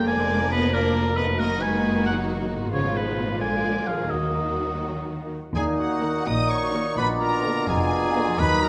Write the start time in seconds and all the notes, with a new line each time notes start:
Already playing: F2 A#3
0.00 A#4 D5
0.07 F1 F3 G#3 D4 A#4 D5 G#5
0.51 B3 B4 D#5
0.73 A#3 A#4 D5
1.17 B3 B4 D#5
1.21 F#2
1.26 D#4
1.30 F#4
1.35 A#3 D#5
1.39 F#1 D#3 A#3 D#4 F#4 A#4 D#5
1.61 G#3 B4 G#5
2.04 F#3 A#4 F#5
2.56 G#2
2.60 B3
2.65 F4
2.69 C#3 F5
2.73 G#1 F3 G#3 B3 F4 C#5
2.95 B2 D#4 B4
3.23 A#2
3.28 A#3
3.33 F4
3.37 D5
3.41 A#1 D3 F3 G#3 A#3 D5 G#5
3.87 F3 G#4 F5
3.93 D#3
3.98 A#3
4.02 F#4
4.07 F#4 D#5
4.11 D#2 D#3 F#3 D#4
5.55 D#2 A#2 D#3 A#3 D#4 G#4 D#5 G#5 A#5
5.67 A#3
5.78 F#4 F#5
5.92 D#5
6.03 D#3 A#3 D#4 A#4
6.15 F#5
6.26 A#1 A#2 A#3 D#4 D#5 A#5 D#6
6.39 F#5
6.50 A#4 C#5 C#6
6.62 F#4
6.74 D#3 A#3 D#4
6.86 D#4
6.97 A#1 A#2 B2 B3 D4 F4 B4 D5 A#5 B5
7.09 A#3
7.21 F4 A#4 A#5
7.32 D5
7.44 D3 A#3 B3 F4 A#4
7.56 F5
7.68 F1 F2 B2 B3 D4 F4 G#4 D5 G#5 A#5 D6
7.80 F5
7.91 A#4
8.03 F4
8.15 D3 A#3 B3 F4
8.27 F3
8.38 D#2 D#3 F#3 D#4 F#4 B4 D#5 A#5 B5
8.50 A#3
8.62 F#4 A#4 A#5